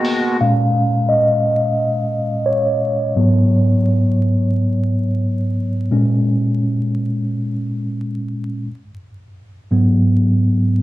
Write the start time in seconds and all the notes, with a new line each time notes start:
Already playing: B2 D#3 G#3 A#3 B3 F#4 G#4
0.04 open hi-hat
0.40 A#2 G#3 C#4 F5
1.09 D#5
2.46 C#5
3.16 G#2 F#3 B3
5.91 A#2 G#3 C#4
9.71 G#2 F#3 B3